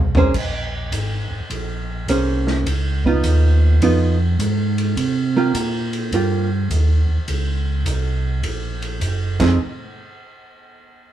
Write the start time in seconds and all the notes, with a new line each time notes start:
Already playing: C2
0.15 A#3 C#4 G#4 C5, floor tom
0.34 A#1, kick, crash
0.92 G#1, kick, hi-hat pedal, ride
1.31 G#1
1.50 A#1, kick, ride
2.08 C2 A#3 C#4 G#4 C5, kick, hi-hat pedal, ride
2.47 snare
2.66 C#2, kick, ride
3.04 B3 D#4 F4, kick
3.24 D#2, kick, hi-hat pedal, ride
3.81 F2 B3 D#4 F4, kick, ride
4.39 G#2, kick, hi-hat pedal, ride
4.78 ride
4.97 C3, kick, ride
5.37 A#3 F4 G4
5.54 A#2, kick, hi-hat pedal, ride
5.93 ride
6.12 G2 A#3 F4 G4, kick, ride
6.70 D#2, kick, hi-hat pedal, ride
7.09 D#2
7.28 C#2, kick, ride
7.85 C2, kick, hi-hat pedal, ride
8.43 A#1, kick, ride
8.82 ride
9.01 F#1, kick, hi-hat pedal, ride
9.40 F2 F3 C4 D#4 G#4, kick, snare, crash